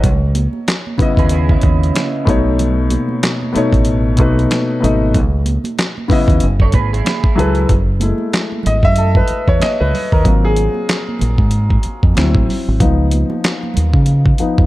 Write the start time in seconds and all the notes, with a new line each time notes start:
Already playing: C#5
0.04 C#2, kick, closed hi-hat, muted conga, low conga
0.35 closed hi-hat, muted conga, high conga
0.53 high conga
0.67 snare, clap, closed hi-hat, muted conga
0.87 high conga
0.98 C#3 B3 E4, muted fingered electric bass stroke, kick, closed hi-hat, muted conga, low conga
1.02 D#5
1.17 D#2 G#4 B4, kick, closed hi-hat
1.29 E4 G#4, closed hi-hat
1.49 C#4 E4, kick
1.61 D#2, kick, closed hi-hat, muted conga, high conga
1.83 closed hi-hat
1.94 snare, clap, closed hi-hat, high conga
2.25 B1 B2 A3 D#4, kick, closed hi-hat, low conga
2.30 C#5
2.59 closed hi-hat, low conga
2.90 closed hi-hat, muted conga, high conga
3.09 high conga
3.23 snare, clap, closed hi-hat
3.43 high conga
3.53 B2 A3 D#4, muted fingered electric bass stroke, closed hi-hat, muted conga, low conga
3.57 C#5
3.73 A1, kick, closed hi-hat
3.85 closed hi-hat
4.17 B1 B2 A3 D#4, kick, closed hi-hat, muted conga, high conga
4.21 B4
4.39 closed hi-hat
4.50 snare, clap, closed hi-hat, high conga
4.80 G#1 B2 A3 D#4, closed hi-hat, muted conga, low conga
4.85 D#5
5.14 C#2, kick, closed hi-hat, low conga
5.46 closed hi-hat, high conga
5.64 closed hi-hat, high conga
5.78 snare, clap, closed hi-hat, muted conga
5.98 high conga
6.08 C#3 B3 E4, muted fingered electric bass stroke, kick, open hi-hat, muted conga, low conga
6.12 D#5
6.28 D#2, kick, closed hi-hat
6.40 F#1, closed hi-hat, muted conga
6.60 A4 C#5, kick
6.72 G#1 G#4 B4, kick, closed hi-hat, high conga
6.93 E4 G#4, closed hi-hat
7.05 snare, clap, closed hi-hat, high conga
7.24 kick
7.35 C#2 F#3 E4 G#4 A4, closed hi-hat, low conga
7.40 B4
7.55 closed hi-hat
7.69 F#1, kick, closed hi-hat, muted conga, low conga
8.00 G#3 A3 E4, closed hi-hat, muted conga, high conga
8.18 high conga
8.32 snare, clap, closed hi-hat, muted conga
8.52 high conga
8.63 G#1 D#5, closed hi-hat, low conga
8.83 F#2 E5, kick
8.96 A4, closed hi-hat
9.15 B4, kick
9.28 muted fingered electric bass stroke, closed hi-hat
9.48 E2 C#5, kick
9.60 D#5, muted fingered electric bass stroke, snare, clap, closed hi-hat, muted conga, high conga
9.80 C#2 B4
9.94 open hi-hat, low conga
10.12 D#2 A#4, kick
10.25 G#1 F#3 A#3 C4 F4, kick, closed hi-hat, low conga
10.45 G#4
10.56 closed hi-hat, muted conga, high conga
10.74 high conga
10.88 snare, clap, closed hi-hat, muted conga
11.09 high conga
11.19 A#1, closed hi-hat, muted conga, low conga
11.38 G#2, kick
11.51 closed hi-hat, muted conga
11.70 kick
11.83 muted fingered electric bass stroke, closed hi-hat, muted conga
12.03 F2, kick
12.15 D2 F#3 C4 E4, snare, clap, closed hi-hat, muted conga, high conga
12.35 A1, kick
12.49 open hi-hat, muted conga, low conga
12.68 G#1
12.80 C#2 F3 B3 D#4, kick, closed hi-hat, muted conga, low conga
13.11 closed hi-hat, high conga
13.30 high conga
13.44 snare, clap, closed hi-hat
13.63 high conga
13.74 D#2, closed hi-hat, low conga
13.94 C#3, kick
14.06 closed hi-hat, muted conga
14.26 kick
14.38 F3 B3 D#4, muted fingered electric bass stroke, closed hi-hat, muted conga
14.58 F2, kick